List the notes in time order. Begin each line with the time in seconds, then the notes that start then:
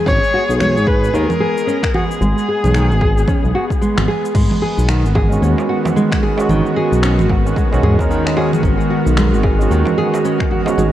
Already playing: G#3 B3 G#4
0.06 G#1 C#4 C#5, kick, cabasa
0.24 cabasa
0.34 F#4
0.49 B1, cabasa
0.60 G#3 C#5, finger snap, low conga, cabasa
0.76 G#1, cabasa
0.87 G#4 B4, kick
1.04 cabasa
1.13 D#2 D#3 A#4, cabasa
1.30 low conga, cabasa
1.40 G#4
1.58 cabasa
1.67 C#4, cabasa
1.83 finger snap, kick, cabasa
1.94 F#4 G#4, low conga
2.11 cabasa
2.21 G#1 G#3, cabasa
2.38 cabasa
2.48 G#4
2.64 B1, low conga, cabasa
2.74 D#3, finger snap, cabasa
2.91 G#1, cabasa
3.01 G#4, kick
3.18 cabasa
3.28 C#4, kick, low conga, cabasa
3.44 B1, cabasa
3.55 F#4
3.71 kick, cabasa
3.81 G#3, cabasa
3.98 G#1, finger snap, low conga, cabasa
4.08 G#4
4.25 cabasa
4.35 G#1 D#3 G#3 F#4 A#4, kick, crash, cabasa
4.51 darbuka tek, low conga, cabasa
4.62 G#4
4.78 B1, cabasa
4.89 D#3, finger snap, cabasa
5.04 G#1, cabasa
5.15 G#4, kick, darbuka tek, low conga
5.29 G#3 C#4 F#4, cabasa
5.42 D#2 C#4, cabasa
5.58 darbuka tek, cabasa
5.69 F#4
5.85 darbuka tek, low conga, cabasa
5.96 G#3, cabasa
6.12 finger snap, kick, cabasa
6.23 G#4
6.37 G#3 C#4, darbuka tek, cabasa
6.41 F#4
6.49 G#1 D#3, low conga, cabasa
6.65 darbuka tek, cabasa
6.76 G#4
6.92 B1, cabasa
7.03 C#4, finger snap, cabasa
7.19 G#1, low conga, cabasa
7.29 F#4, kick, darbuka ka, darbuka tek
7.45 G#3 C#4 F#4, cabasa
7.56 G#3, kick, cabasa
7.72 B1 G#3 C#4 F#4, darbuka tek, cabasa
7.83 G#2 G#4, darbuka dum, low conga
7.99 G#3 C#4 A#4, kick, darbuka ka, darbuka tek, darbuka dum, cabasa
8.10 D#3, cabasa
8.26 G#3 C#4 D#4, finger snap, cabasa
8.36 G#3 C#4 F#4 G#4, darbuka tek
8.53 low conga, cabasa
8.63 G#1 C#4, kick, cabasa
8.79 darbuka tek, cabasa
8.90 F#4
9.07 B1, cabasa
9.17 G#3, finger snap, low conga, cabasa
9.33 G#1, cabasa
9.43 G#4, kick, darbuka tek
9.59 G#3 C#4 F#4, cabasa
9.70 D#2 D#3, cabasa
9.85 darbuka tek, low conga, cabasa
9.98 G#4
10.13 darbuka tek, cabasa
10.24 C#4, cabasa
10.40 finger snap, kick, cabasa
10.51 F#4, low conga
10.66 G#3 C#4 F#4, darbuka tek, cabasa
10.77 G#1 G#3, cabasa